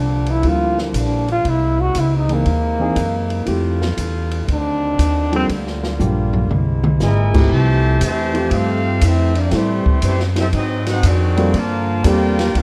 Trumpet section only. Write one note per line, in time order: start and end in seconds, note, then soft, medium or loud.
7.03 7.49 E4 medium
7.03 7.49 A#4 medium
7.03 7.49 D#5 medium
7.03 7.49 G#5 loud
7.53 8.02 G4 loud
7.53 8.02 C5 loud
7.53 8.03 E5 loud
7.53 8.02 A5 loud
8.04 8.46 G4 medium
8.04 8.45 C5 loud
8.04 8.45 E5 medium
8.04 8.45 A5 loud
8.49 8.53 E5 medium
8.54 9.03 C4 medium
8.54 9.03 G4 medium
8.54 9.03 A4 medium
8.54 9.03 F5 loud
9.04 9.37 C4 medium
9.04 9.37 G4 medium
9.04 9.37 A4 medium
9.04 9.38 E5 loud
9.39 9.54 A#3 medium
9.39 9.53 E4 medium
9.39 9.53 G4 medium
9.39 9.54 D5 medium
9.54 10.04 A3 medium
9.54 10.04 E4 medium
9.54 10.04 G4 medium
9.54 10.04 C5 loud
10.06 10.21 A3 medium
10.06 10.21 E4 medium
10.06 10.21 G4 medium
10.06 10.21 C5 medium
10.40 10.47 C4 medium
10.40 10.47 G4 medium
10.40 10.46 A4 medium
10.40 10.46 E5 medium
10.55 10.86 C4 medium
10.55 10.86 F#4 medium
10.55 10.86 G#4 medium
10.55 10.86 D#5 loud
10.89 11.05 D#4 medium
10.89 11.05 G#4 medium
10.89 11.05 C5 medium
10.89 11.05 F#5 loud
11.06 11.55 C4 medium
11.06 11.55 F#4 medium
11.06 11.55 G#4 medium
11.06 11.55 D5 medium
11.56 12.05 F4 loud
11.56 12.05 A#4 loud
11.56 12.06 D5 loud
11.56 12.06 A5 loud
12.07 12.56 F4 medium
12.07 12.56 A#4 medium
12.07 12.56 D5 medium
12.07 12.56 G5 loud
12.57 12.62 D4 medium
12.57 12.62 A4 medium
12.57 12.62 A#4 medium
12.57 12.62 F5 medium